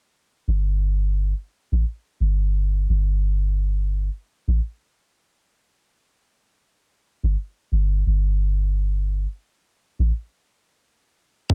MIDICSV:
0, 0, Header, 1, 3, 480
1, 0, Start_track
1, 0, Tempo, 689655
1, 327, Time_signature, 4, 2, 24, 8
1, 8035, End_track
2, 0, Start_track
2, 0, Title_t, "808-style bass"
2, 0, Program_c, 0, 38
2, 332, Note_on_c, 0, 31, 88
2, 925, Note_off_c, 0, 31, 0
2, 1197, Note_on_c, 0, 33, 93
2, 1279, Note_off_c, 0, 33, 0
2, 1533, Note_on_c, 0, 31, 83
2, 1992, Note_off_c, 0, 31, 0
2, 2012, Note_on_c, 0, 31, 85
2, 2846, Note_off_c, 0, 31, 0
2, 3116, Note_on_c, 0, 33, 92
2, 3198, Note_off_c, 0, 33, 0
2, 5035, Note_on_c, 0, 31, 97
2, 5118, Note_off_c, 0, 31, 0
2, 5372, Note_on_c, 0, 31, 83
2, 5586, Note_off_c, 0, 31, 0
2, 5612, Note_on_c, 0, 31, 76
2, 6445, Note_off_c, 0, 31, 0
2, 6955, Note_on_c, 0, 33, 91
2, 7038, Note_off_c, 0, 33, 0
2, 8006, Note_on_c, 0, 31, 86
2, 8035, Note_off_c, 0, 31, 0
2, 8035, End_track
3, 0, Start_track
3, 0, Title_t, "Drums"
3, 8002, Note_on_c, 9, 42, 79
3, 8003, Note_on_c, 9, 36, 95
3, 8035, Note_off_c, 9, 36, 0
3, 8035, Note_off_c, 9, 42, 0
3, 8035, End_track
0, 0, End_of_file